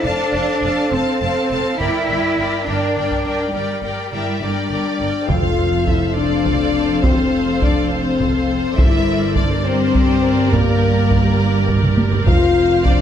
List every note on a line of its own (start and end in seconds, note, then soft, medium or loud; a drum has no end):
0.00 1.76 A4 medium
0.00 1.76 C5 soft
0.00 0.32 A5 medium
0.04 0.13 F1 medium
0.04 0.92 D4 medium
0.04 0.34 A4 soft
0.04 0.33 F5 soft
0.33 0.42 F1 medium
0.33 0.63 A4 soft
0.33 0.63 F5 soft
0.33 0.62 A5 soft
0.63 0.71 F1 soft
0.63 0.91 A4 soft
0.63 0.92 F5 soft
0.63 0.92 A5 soft
0.92 1.00 F1 medium
0.92 1.80 C4 medium
0.92 1.20 A4 soft
0.92 1.21 F5 soft
0.92 1.20 A5 soft
1.21 1.30 F1 medium
1.21 1.50 A4 soft
1.21 1.51 F5 soft
1.21 1.48 A5 soft
1.50 1.59 F1 soft
1.50 1.79 A4 soft
1.50 1.80 F5 soft
1.50 1.79 A5 soft
1.79 1.88 G1 medium
1.79 2.65 E4 medium
1.79 2.07 A#4 soft
1.79 3.95 A#4 soft
1.79 2.08 D5 soft
1.79 3.95 D5 medium
1.79 2.07 G5 soft
1.79 taiko soft
2.08 2.17 G1 soft
2.08 2.37 A#4 soft
2.08 2.38 D5 soft
2.08 2.37 G5 soft
2.38 2.46 G1 soft
2.38 2.66 A#4 soft
2.38 2.67 D5 soft
2.38 2.66 G5 soft
2.67 2.76 G1 soft
2.67 3.54 D4 medium
2.67 2.95 A#4 soft
2.67 2.96 D5 soft
2.67 2.95 G5 soft
2.96 3.05 G1 soft
2.96 3.23 A#4 soft
2.96 3.24 D5 soft
2.96 3.25 G5 soft
3.11 taiko soft
3.25 3.34 G1 soft
3.25 3.52 A#4 soft
3.25 3.54 D5 soft
3.25 3.54 G5 soft
3.53 3.63 G1 soft
3.53 4.97 G3 soft
3.53 3.82 A#4 soft
3.53 3.82 D5 soft
3.53 3.83 G5 soft
3.83 3.91 G1 soft
3.83 4.12 A#4 soft
3.83 4.11 D5 soft
3.83 4.12 G5 soft
4.12 4.21 G1 soft
4.12 4.40 E4 medium
4.12 4.41 A#4 soft
4.12 4.40 D5 soft
4.12 4.40 E5 soft
4.12 4.42 G5 soft
4.40 4.50 G1 soft
4.40 5.28 D4 soft
4.40 4.70 A#4 soft
4.40 4.69 D5 soft
4.40 5.29 D5 soft
4.40 4.71 G5 soft
4.70 4.79 G1 soft
4.70 4.99 A#4 soft
4.70 4.98 D5 soft
4.70 5.00 G5 soft
5.00 5.08 G1 soft
5.00 5.28 A#4 soft
5.00 5.28 D5 soft
5.00 5.29 G5 soft
5.28 8.74 F1 soft
5.28 6.12 F2 medium
5.28 8.74 F2 soft
5.28 5.87 F4 medium
5.28 9.61 A4 soft
5.28 9.61 C5 soft
5.28 8.73 F5 soft
5.28 5.86 F5 medium
5.28 taiko medium
5.28 impact soft
5.87 6.15 E4 medium
5.87 6.17 E5 soft
5.87 taiko medium
6.16 7.01 D4 medium
6.16 7.02 D5 medium
6.45 taiko medium
7.03 7.61 C4 medium
7.03 7.60 C5 medium
7.03 taiko medium
7.61 7.90 D4 medium
7.61 7.91 D5 medium
7.61 taiko medium
7.91 8.78 C4 medium
7.91 8.76 C5 medium
8.20 taiko medium
8.76 12.22 G1 medium
8.76 12.22 G2 medium
8.76 9.35 E4 medium
8.76 13.01 A#4 soft
8.76 12.26 D5 soft
8.76 9.36 E5 medium
8.76 taiko medium
9.36 9.65 D4 medium
9.36 9.64 D5 soft
9.36 taiko medium
9.64 10.52 C4 medium
9.64 12.26 G4 soft
9.64 12.26 A#4 medium
9.64 10.52 C5 medium
9.95 taiko medium
10.52 11.37 A#3 medium
10.52 11.37 A#4 medium
10.52 taiko medium
11.11 taiko medium
11.38 11.68 A#3 medium
11.38 11.67 A#4 medium
11.69 taiko medium
11.83 taiko mid medium
11.98 taiko high medium
12.12 taiko low medium
12.26 13.01 F1 medium
12.26 13.01 F2 medium
12.26 12.80 F4 medium
12.26 13.01 C5 medium
12.26 13.01 F5 medium
12.26 12.81 F5 medium
12.26 taiko medium
12.84 13.01 D4 medium
12.84 13.01 D5 medium
12.84 taiko medium